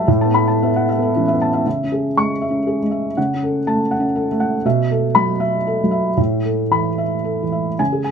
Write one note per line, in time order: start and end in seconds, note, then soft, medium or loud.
0.00 0.10 A4 medium
0.00 0.08 E5 medium
0.00 0.10 A5 medium
0.08 1.61 A2 medium
0.08 0.29 E5 medium
0.21 0.42 A5 medium
0.25 0.53 B3 soft
0.34 0.47 B5 medium
0.47 0.68 A5 medium
0.63 0.90 B3 medium
0.63 0.83 E5 medium
0.76 0.88 F#5 soft
0.89 1.09 E5 medium
0.98 1.25 B3 soft
0.98 1.22 A4 soft
1.16 1.35 E3 medium
1.16 1.32 C#4 soft
1.28 1.48 E5 medium
1.33 1.59 B3 soft
1.42 1.61 A5 medium
1.54 1.65 E5 medium
1.66 3.13 C#3 soft
1.66 2.07 E5 soft
1.83 2.10 C#4 soft
1.92 2.32 G#4 soft
2.17 2.44 G#3 soft
2.17 2.57 C#6 medium
2.41 2.82 E5 soft
2.50 2.77 C#4 soft
2.67 3.07 G#4 soft
2.83 3.10 G#3 soft
2.91 3.16 E5 soft
3.17 4.60 C#3 medium
3.17 3.56 F#5 soft
3.34 3.60 C#4 soft
3.43 3.82 A4 soft
3.67 3.93 A3 soft
3.67 4.06 A5 medium
3.91 4.30 F#5 soft
4.00 4.25 C#4 soft
4.15 4.54 A4 medium
4.31 4.58 A3 soft
4.40 4.64 F#5 medium
4.65 6.14 B2 medium
4.65 5.05 E5 medium
4.91 5.30 A4 medium
5.15 5.42 F#3 medium
5.15 5.55 B5 medium
5.40 5.81 E5 medium
5.67 6.08 A4 soft
5.83 6.11 F#3 soft
5.91 6.16 E5 soft
6.17 7.75 A2 soft
6.17 6.61 E5 soft
6.45 6.88 A4 soft
6.71 7.00 E3 soft
6.71 7.15 B5 medium
6.98 7.42 E5 soft
7.24 7.68 A4 soft
7.42 7.72 E3 soft
7.52 7.79 E5 soft
7.79 8.11 C#3 medium
7.79 8.00 G#5 medium
7.92 8.11 G#4 soft
8.04 8.11 G#5 soft